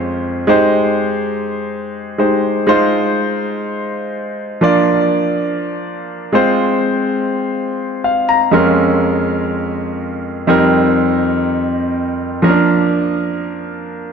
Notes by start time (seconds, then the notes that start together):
Already playing: F2 G#3 C#4 F4 C5
0.47 G#3 D#4 G4 C5
2.18 G#3 D#4 G4 C5
2.67 G#3 D#4 F4 C5
4.61 F3 A#3 D4 F4 D5
6.32 G#3 C4 F4 C5
8.04 F5
8.29 A#5
8.51 F2 G#3 C#4 F4 A#4
10.47 F2 G3 C4 D#4 A#4
12.42 F3 A#3 C#4 A#4
12.49 D4